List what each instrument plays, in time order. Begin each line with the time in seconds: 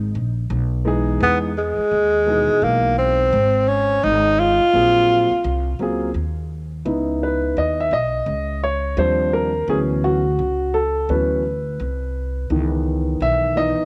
Already playing: upright bass G#1, tenor saxophone D#4
0.15 upright bass A#1
0.50 upright bass B1
0.85 grand piano E3 G#3 B3 D#4 G#4
1.20 upright bass E2, grand piano E3 G#3 B3 D#4 G#4, tenor saxophone B3
1.58 tenor saxophone G#3
1.78 muted upright bass stroke
1.91 upright bass D#2
2.26 grand piano B2 E3 G#3 D#4 G#4
2.49 muted upright bass stroke
2.62 upright bass B1, tenor saxophone A#3
2.98 tenor saxophone C4
3.33 upright bass G#1
3.68 tenor saxophone C#4
4.04 upright bass G#1, tenor saxophone D#4
4.40 tenor saxophone F4
4.61 muted upright bass stroke
4.72 upright bass A#1, grand piano F#3 A#3 C4 F4 G#4
5.31 muted upright bass stroke
5.44 upright bass C2
5.79 upright bass C#2, grand piano F#3 A#3 C4 F4 G#4
6.14 upright bass D#2
6.85 upright bass C#2, grand piano B3 D#4 E4
7.23 grand piano B4
7.57 upright bass D#2, grand piano D#5
7.80 grand piano E5
7.91 upright bass B1, grand piano D#5
8.26 upright bass C#2
8.63 grand piano C#5
8.97 upright bass D#2, grand piano F3 G3 C4 D4 C5
9.33 grand piano A#4
9.68 upright bass D2, grand piano E3 F#3 B3 C#4 G#4
10.04 grand piano F#4
10.39 upright bass C#2
10.74 grand piano A4
11.09 upright bass D2, grand piano E3 F#3 B3 C#4 B4
11.80 upright bass C2
12.50 upright bass C#2, grand piano D#3 E3 B3
13.20 upright bass B1, grand piano E5
13.56 grand piano E3 B3 D#4 D#5
13.78 muted upright bass stroke